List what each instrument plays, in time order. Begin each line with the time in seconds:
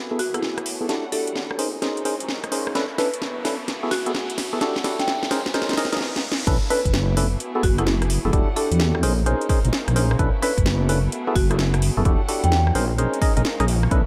Already playing: violin section A3 B3 E4 G#4, ambient pad B3 F#4, riser
0.05 ambient pad C#5
0.11 synth stab B3 E4 F#4 G#4 A4
0.19 wobble bass F#1, marimba F#4, open hi-hat
0.34 synth stab B3 E4 F#4 G#4 A4, marimba E4, cross-stick, closed hi-hat
0.43 snare
0.58 cross-stick, closed hi-hat
0.66 open hi-hat
0.81 wobble bass F#1, synth stab B3 E4 F#4 G#4 A4
0.89 wobble bass E1, violin section G3 D4 F#5, synth stab D4 E4 F#4 G4 A4, ambient pad E4, snare, closed hi-hat
1.12 synth stab D4 E4 F#4 G4 A4, marimba A4, open hi-hat
1.27 wobble bass E2, closed hi-hat
1.36 snare
1.51 cross-stick
1.58 wobble bass A#1, violin section G#3 C4 C#4 D#4, synth stab C#4 D#4 G#4 A#4 C5, ambient pad A#4, open hi-hat
1.80 synth stab C#4 D#4 G#4 A#4 C5, ambient pad C#6, snare, closed hi-hat
1.97 closed hi-hat
2.03 synth stab C#4 D#4 G#4 A#4 C5, ambient pad F5, open hi-hat
2.20 wobble bass A#1, closed hi-hat
2.29 snare
2.44 wobble bass A#1, cross-stick, closed hi-hat
2.52 synth stab C#4 D#4 G#4 A#4 C5, open hi-hat
2.67 cross-stick
2.75 wobble bass B1, violin section A3 D4 E4, ambient pad B3, synth stab C#4 D4 E4 A4 B4, snare, closed hi-hat
2.98 synth stab C#4 D4 E4 A4 B4, ambient pad F#4, marimba B4, snare, open hi-hat
3.13 wobble bass F#1, closed hi-hat
3.22 snare
3.45 synth stab C#4 D4 E4 A4 B4, snare, open hi-hat
3.68 violin section B3 E4 G#4, snare, closed hi-hat
3.83 synth stab B3 E4 F#4 G#4 A4
3.91 wobble bass F#1, marimba F#4, snare, open hi-hat
4.06 synth stab B3 E4 F#4 G#4 A4, closed hi-hat
4.11 ambient pad C#5, snare
4.30 closed hi-hat
4.38 snare, open hi-hat
4.53 wobble bass F#1, synth stab B3 E4 F#4 G#4 A4
4.61 wobble bass E1, violin section G3 D4 F#5, synth stab D4 E4 F#4 G4 A4, ambient pad E4, snare, closed hi-hat
4.76 snare
4.84 synth stab D4 E4 F#4 G4 A4, snare, open hi-hat
4.99 wobble bass E2, marimba G5, snare, closed hi-hat
5.08 marimba G5, snare
5.23 snare
5.31 wobble bass A#1, violin section G#3 C4 C#4 D#4, synth stab C#4 D#4 G#4 A#4 C5, ambient pad A#4, snare, open hi-hat
5.46 snare
5.54 synth stab C#4 D#4 G#4 A#4 C5, snare, closed hi-hat, swell
5.62 snare
5.69 snare, closed hi-hat
5.73 snare
5.77 synth stab C#4 D#4 G#4 A#4 D#5, snare, open hi-hat
5.85 snare
5.92 wobble bass A#1, synth stab C#4 D#4 G#4 A#4 D#5, snare, closed hi-hat
5.97 snare
6.01 snare
6.16 snare
6.32 snare
6.47 wobble bass B1, violin section A3 C#4 D4 E4, ambient pad B3, synth stab C#4 D4 E4 A4 B4, kick, closed hi-hat, crash
6.70 synth stab C#4 D4 E4 A4 B4, ambient pad F#4, marimba B4, open hi-hat
6.85 wobble bass F#1, kick, closed hi-hat
6.94 snare
7.17 synth stab C#4 D4 E4 A4 B4, open hi-hat
7.40 violin section B3 E4 G#4, closed hi-hat
7.55 synth stab B3 E4 F#4 G#4 A4
7.63 wobble bass F#1, marimba F#4, kick, open hi-hat
7.78 synth stab B3 E4 F#4 G#4 A4, marimba E4, cross-stick, closed hi-hat
7.83 ambient pad C#5, snare
8.02 cross-stick, closed hi-hat
8.10 open hi-hat
8.25 wobble bass F#1, synth stab B3 E4 F#4 G#4 A4
8.33 wobble bass E1, violin section G3 D4 F#5, synth stab D4 E4 F#4 G4 A4, ambient pad E4, kick, closed hi-hat
8.56 synth stab D4 E4 F#4 G4 A4, marimba A4, open hi-hat
8.71 wobble bass E2, closed hi-hat
8.80 snare
8.95 cross-stick
9.03 wobble bass A#1, violin section G#3 C4 C#4 D#4, synth stab C#4 D#4 G#4 A#4 C5, ambient pad A#4, open hi-hat
9.26 synth stab C#4 D#4 G#4 A#4 C5, closed hi-hat
9.41 closed hi-hat
9.48 synth stab C#4 D#4 G#4 A#4 C5, ambient pad C#6, kick, open hi-hat
9.54 ambient pad F5
9.64 wobble bass A#1, closed hi-hat
9.73 snare
9.88 wobble bass A#1, cross-stick, closed hi-hat
9.96 synth stab C#4 D#4 G#4 A#4 C5, open hi-hat
10.11 cross-stick
10.19 wobble bass B1, violin section A3 D4 E4, ambient pad B3, synth stab C#4 D4 E4 A4 B4, kick, closed hi-hat
10.34 ambient pad F#4
10.42 synth stab C#4 D4 E4 A4 B4, marimba B4, open hi-hat
10.58 wobble bass F#1, kick, closed hi-hat
10.66 snare
10.89 synth stab C#4 D4 E4 A4 B4, open hi-hat
11.12 violin section B3 E4 G#4, closed hi-hat
11.27 synth stab B3 E4 F#4 G#4 A4
11.35 wobble bass F#1, marimba F#4, kick, open hi-hat
11.45 ambient pad C#5
11.51 synth stab B3 E4 F#4 G#4 A4, cross-stick, closed hi-hat
11.59 snare
11.74 cross-stick, closed hi-hat
11.82 open hi-hat
11.97 wobble bass F#1, synth stab B3 E4 F#4 G#4 A4
12.05 wobble bass E1, violin section G3 D4 F#5, synth stab D4 E4 F#4 G4 A4, ambient pad E4, kick, closed hi-hat
12.29 synth stab D4 E4 F#4 G4 A4, open hi-hat
12.44 wobble bass E2, marimba G5, closed hi-hat
12.52 marimba G5, snare
12.67 cross-stick
12.75 wobble bass A#1, violin section G#3 C4 C#4 D#4, synth stab C#4 D#4 G#4 A#4 C5, ambient pad A#4, open hi-hat
12.98 synth stab C#4 D#4 G#4 A#4 C5, closed hi-hat
13.14 ambient pad F5, closed hi-hat
13.22 synth stab C#4 D#4 G#4 A#4 D#5, kick, open hi-hat
13.26 ambient pad C#6
13.37 wobble bass A#1, synth stab C#4 D#4 G#4 A#4 D#5, closed hi-hat
13.45 snare
13.60 wobble bass A#1, synth stab C#4 D#4 G#4 A#4 D#5, cross-stick, closed hi-hat
13.68 open hi-hat
13.83 cross-stick
13.91 wobble bass B1, violin section A3 D4 E4, ambient pad B3, synth stab C#4 D4 E4 A4 B4, kick, closed hi-hat